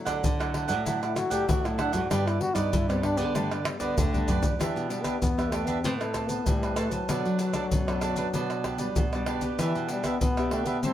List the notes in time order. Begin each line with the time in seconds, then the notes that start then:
Already playing: D3 F#3 A3 E4
0.05 D3 A4 D5 F#5, pandeiro, tamborim, maracas, surdo
0.23 A2 D3, pandeiro, maracas, surdo
0.39 F#3 A3 E4 A4 D5 F#5, pandeiro, tamborim, maracas
0.54 E4 A4 D5 F#5, pandeiro, tamborim
0.68 A2 F#3 A3 E4 A4 D5 F#5, pandeiro, maracas, surdo
0.85 D3 F#3 A3 E4 A4 D5 F#5, pandeiro, maracas, surdo
1.01 E4 A4 D5 F#5, pandeiro, tamborim, maracas
1.15 F#3 A3 E4 F#4, muted cavaquinho stroke, pandeiro, tamborim, maracas
1.30 A2 G4 A4 D5 F#5, pandeiro, maracas, surdo
1.47 A2 E4 F#4 A4 D5 F#5, pandeiro, maracas, surdo
1.64 F#3 A3 E4, pandeiro, tamborim, maracas
1.78 D4 E4 A4 D5 F#5, pandeiro, tamborim
1.93 G#2 F#4 A4 D5 F#5, pandeiro, maracas, surdo
2.10 G2 G3 B3 D4 G4 B4 D5, pandeiro, tamborim, maracas, surdo
2.26 E4 G4 B4 D5, pandeiro, tamborim, maracas
2.40 G3 B3 D4 F#4, muted cavaquinho stroke, pandeiro
2.55 G2 D#4 G4 B4 D5, pandeiro, tamborim, maracas, surdo
2.72 G2 D3 E4, pandeiro, maracas, surdo
2.88 G3 B3 C4 D4 G4 B4 D5, pandeiro, tamborim, maracas
3.02 D4 G4 B4 D5, pandeiro, tamborim
3.17 D3 B3 G4 B4 D5, pandeiro, maracas, surdo
3.34 G2 G3 A3 B3 D4 G4 B4 D5, pandeiro, tamborim, maracas, surdo
3.51 D3 G4 B4 D5, pandeiro, tamborim, maracas
3.64 G3 B3 D4, muted cavaquinho stroke, pandeiro, tamborim, maracas
3.79 D3 B3 G4 B4 D5, pandeiro, maracas, surdo
3.97 D3 A3 D4 G4 B4 D5, surdo, pandeiro, maracas
4.13 G3 B3 D4, pandeiro, maracas, surdo
4.28 F#2 D4 G4 B4 D5, pandeiro, maracas, surdo
4.42 E2 G4 B4 D5, pandeiro, maracas, surdo
4.59 E2 E3 B3 D4 G4 B4 E5, pandeiro, tamborim, maracas, surdo
4.76 B2, pandeiro, maracas
4.89 G3 B3 D4 G4 B4 E5, pandeiro, maracas
5.03 B3 D4 G4 B4 E5, pandeiro, tamborim, maracas, surdo
5.21 E2 B2 B3, pandeiro, maracas, surdo
5.37 B3 D4 G4 B4 E5, pandeiro, tamborim, maracas, surdo
5.51 A3 D4 G4 B4 E5, pandeiro, tamborim, maracas
5.66 B3 D4 G4 B4 E5, pandeiro, maracas, surdo
5.83 A2 A3 C4 E4 A4 B4 C5 A5, pandeiro, maracas, surdo
5.99 A3 C4 E4 B4, pandeiro, tamborim, maracas
6.14 A4 B4 C5 A5, pandeiro, tamborim, maracas, surdo
6.28 B3 B4 C5 A5, pandeiro, maracas
6.46 A2 E3 G3 C4 E4 B4, pandeiro, maracas, surdo
6.63 B4 C5 A5, pandeiro, tamborim, maracas
6.76 A3 C4 E4 A4 B4 C5 A5, pandeiro, tamborim, maracas
6.91 F#3 B4 C5 A5, pandeiro, maracas, surdo
7.09 B2 F#3 A3 D4 A4 B4 D5, pandeiro, tamborim, maracas, surdo
7.25 F#3, pandeiro, maracas
7.38 D4 A4 B4 D5, pandeiro, maracas
7.53 F#3 A3 D4 A4 B4 D5, pandeiro, tamborim, maracas, surdo
7.71 F#2 B2, pandeiro, maracas, surdo
7.87 F#3 A3 D4 A4 B4 D5, pandeiro, tamborim, maracas, surdo
8.01 D4 A4 B4 D5, pandeiro, tamborim, maracas
8.16 B3 D4 A4 B4 D5, pandeiro, maracas, surdo
8.34 B2 D4 B4 D5, pandeiro, maracas, surdo
8.50 pandeiro, tamborim, maracas
8.64 D4 G4 B4 D5, pandeiro, tamborim, surdo
8.78 G3 B3 D4 B4 D5, pandeiro, maracas
8.96 B2, pandeiro, maracas, surdo
9.13 G3 B3 D4 G4 B4 D5, pandeiro, tamborim, maracas
9.26 D4 G4 B4 D5, pandeiro, tamborim
9.41 B3 D4 G4 B4 D5, pandeiro, maracas, surdo
9.59 E3 D4 G4 B4 E5, pandeiro, tamborim, maracas, surdo
9.75 B2, pandeiro, maracas
9.89 G3 B3 D4 G4 B4 E5, pandeiro, maracas
10.04 B3 D4 G4 B4 E5, pandeiro, tamborim, maracas, surdo
10.21 B2 B3, pandeiro, maracas, surdo
10.37 B3 D4 G4 B4 E5, pandeiro, tamborim, maracas, surdo
10.51 A3 D4 G4 B4 E5, pandeiro, tamborim
10.66 B3 D4 G4 B4 E5, pandeiro, maracas, surdo
10.83 A2 G3 C4 E4 G4 C5 E5 A5, pandeiro, maracas, surdo